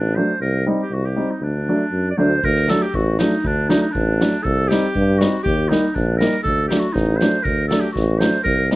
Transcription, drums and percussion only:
2.44 kick medium
2.56 snare soft
2.68 snare medium
2.94 kick medium
3.19 snare medium
3.45 kick medium
3.70 snare medium
3.95 kick medium
4.21 snare medium
4.45 kick medium
4.71 snare medium
4.95 kick medium
5.21 snare medium
5.46 kick medium
5.72 snare medium
5.96 kick medium
6.21 snare medium
6.46 kick medium
6.71 snare medium
6.96 kick medium
6.96 snare soft
7.21 snare medium
7.45 kick medium
7.71 snare medium
7.96 kick medium
7.96 snare soft
8.21 snare medium
8.46 kick medium
8.71 snare medium

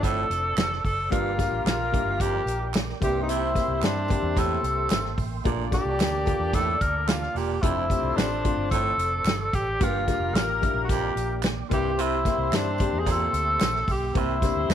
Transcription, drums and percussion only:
0.03 kick medium
0.03 closed hi-hat medium
0.03 tambourine medium
0.31 closed hi-hat medium
0.31 tambourine soft
0.57 snare loud
0.57 clap loud
0.57 closed hi-hat medium
0.57 tambourine loud
0.72 snare soft
0.85 kick medium
0.85 open hi-hat soft
0.85 tambourine soft
1.12 kick loud
1.12 closed hi-hat loud
1.39 kick medium
1.39 snare soft
1.39 closed hi-hat medium
1.39 tambourine medium
1.67 snare loud
1.67 clap medium
1.67 closed hi-hat medium
1.67 tambourine medium
1.94 kick loud
1.94 closed hi-hat medium
2.20 kick medium
2.20 closed hi-hat medium
2.20 tambourine medium
2.47 closed hi-hat medium
2.47 tambourine soft
2.74 snare loud
2.74 clap loud
2.74 closed hi-hat medium
2.74 tambourine loud
2.89 snare soft
3.02 kick loud
3.02 closed hi-hat medium
3.02 tambourine soft
3.29 closed hi-hat medium
3.29 tambourine soft
3.55 kick medium
3.55 snare soft
3.55 closed hi-hat medium
3.55 tambourine soft
3.83 snare loud
3.83 clap medium
3.83 closed hi-hat medium
3.83 tambourine medium
4.08 kick medium
4.08 closed hi-hat medium
4.08 tambourine soft
4.37 kick loud
4.37 closed hi-hat medium
4.37 tambourine medium
4.64 closed hi-hat medium
4.64 tambourine soft
4.90 snare loud
4.90 clap loud
4.90 closed hi-hat medium
4.90 tambourine loud
5.05 snare soft
5.18 kick medium
5.18 open hi-hat soft
5.18 tambourine soft
5.45 kick loud
5.45 closed hi-hat medium
5.72 kick medium
5.72 snare soft
5.72 closed hi-hat medium
5.72 tambourine soft
6.00 snare loud
6.00 clap loud
6.00 closed hi-hat medium
6.00 tambourine medium
6.26 kick medium
6.26 closed hi-hat medium
6.26 tambourine soft
6.53 kick loud
6.53 closed hi-hat medium
6.53 tambourine medium
6.81 kick medium
6.81 closed hi-hat medium
6.81 tambourine soft
7.08 snare loud
7.08 clap loud
7.08 closed hi-hat medium
7.08 tambourine medium
7.23 snare soft
7.36 open hi-hat soft
7.36 tambourine soft
7.63 kick loud
7.63 closed hi-hat medium
7.63 tambourine soft
7.90 kick medium
7.90 closed hi-hat medium
7.90 tambourine soft
8.18 snare loud
8.18 clap medium
8.18 closed hi-hat medium
8.18 tambourine medium
8.45 kick medium
8.45 closed hi-hat medium
8.71 kick medium
8.71 closed hi-hat medium
8.71 tambourine medium
8.99 closed hi-hat medium
8.99 tambourine soft
9.25 snare loud
9.25 clap loud
9.25 closed hi-hat medium
9.25 tambourine loud
9.53 kick medium
9.53 closed hi-hat medium
9.53 tambourine soft
9.81 kick loud
9.81 closed hi-hat loud
9.81 tambourine soft
10.08 kick medium
10.08 snare soft
10.08 closed hi-hat medium
10.08 tambourine medium
10.36 snare loud
10.36 clap medium
10.36 closed hi-hat medium
10.36 tambourine medium
10.62 kick medium
10.62 closed hi-hat medium
10.62 tambourine soft
10.89 kick medium
10.89 closed hi-hat medium
10.89 tambourine medium
11.17 closed hi-hat medium
11.17 tambourine soft
11.43 snare loud
11.43 clap loud
11.43 closed hi-hat medium
11.43 tambourine loud
11.71 kick loud
11.71 closed hi-hat medium
11.71 tambourine soft
11.99 closed hi-hat medium
12.25 kick medium
12.25 snare soft
12.25 closed hi-hat medium
12.25 tambourine medium
12.53 snare loud
12.53 clap medium
12.53 closed hi-hat medium
12.53 tambourine medium
12.78 kick loud
12.78 closed hi-hat medium
12.78 tambourine soft
13.06 kick medium
13.06 closed hi-hat medium
13.06 tambourine medium
13.34 closed hi-hat medium
13.34 tambourine soft
13.61 snare loud
13.61 clap loud
13.61 closed hi-hat medium
13.61 tambourine loud
13.75 snare soft
13.88 kick medium
13.88 open hi-hat soft
13.88 tambourine soft
14.15 kick loud
14.15 closed hi-hat medium
14.15 tambourine soft
14.42 kick medium
14.42 snare soft
14.42 closed hi-hat medium
14.42 tambourine medium
14.70 snare loud
14.70 clap medium
14.70 closed hi-hat medium
14.70 tambourine loud

